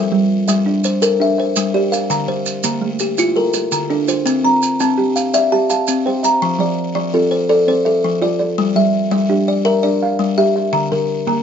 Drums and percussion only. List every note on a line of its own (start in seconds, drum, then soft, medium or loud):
0.48 maracas medium
0.84 maracas medium
1.02 maracas medium
1.56 maracas medium
1.93 maracas medium
2.10 maracas medium
2.46 maracas medium
2.63 maracas medium
2.99 maracas medium
3.18 maracas medium
3.53 maracas medium
3.72 maracas medium
4.08 maracas medium
4.26 maracas medium
4.62 maracas medium
4.80 maracas medium
5.16 maracas medium
5.34 maracas medium
5.70 maracas medium
5.87 maracas medium
6.24 maracas medium